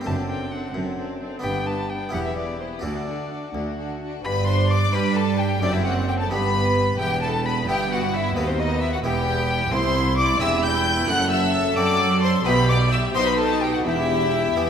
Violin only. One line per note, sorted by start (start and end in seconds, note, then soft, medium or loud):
0.06 0.14 A5 medium
0.29 0.53 G5 medium
0.51 0.75 F#5 medium
1.43 1.68 G5 medium
1.67 1.91 A5 medium
1.90 2.13 G5 medium
2.14 2.18 F#5 medium
2.26 2.36 E5 medium
2.37 2.60 D5 medium
2.60 2.65 C5 medium
2.73 2.84 B4 medium
2.83 3.54 D5 medium
4.25 4.33 B5 medium
4.48 4.72 C6 medium
4.71 4.95 D6 medium
4.94 5.18 B5 medium
5.17 5.41 A5 medium
5.40 5.61 G5 medium
5.62 5.74 D5 medium
5.73 5.84 E5 medium
5.84 5.92 F#5 medium
6.08 6.19 G5 medium
6.19 6.31 A5 medium
6.31 6.98 B5 medium
6.99 7.22 G5 medium
7.22 7.48 A5 medium
7.46 7.68 B5 medium
7.69 7.93 G5 loud
7.92 8.15 F#5 medium
8.14 8.36 E5 medium
8.37 8.49 B4 medium
8.47 8.61 C5 medium
8.59 8.81 D#5 medium
8.81 8.92 E5 medium
8.93 8.97 F#5 medium
9.04 9.73 G5 loud
9.71 10.17 C6 loud
10.17 10.42 D6 medium
10.41 10.65 E6 loud
10.63 11.07 G6 loud
11.08 11.30 F#6 loud
11.31 11.78 E6 loud
11.77 12.22 D6 loud
12.22 12.45 C6 loud
12.46 12.70 B5 loud
12.69 12.92 D6 loud
12.92 13.00 E6 medium
13.15 13.26 C6 loud
13.27 13.40 B5 medium
13.38 13.63 A5 medium
13.62 13.73 G5 medium
13.74 13.79 F#5 medium
13.85 14.70 E5 loud